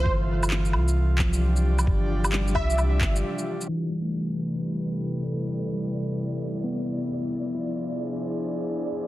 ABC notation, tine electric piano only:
X:1
M:4/4
L:1/16
Q:"Swing 16ths" 1/4=132
K:Am
V:1 name="Tine electric piano" clef=bass
E,2 z8 F,6- | F,4 G,12 | E, G, A,12 z2 | z2 G,8 B,6- |
B,2 E12 z2 |]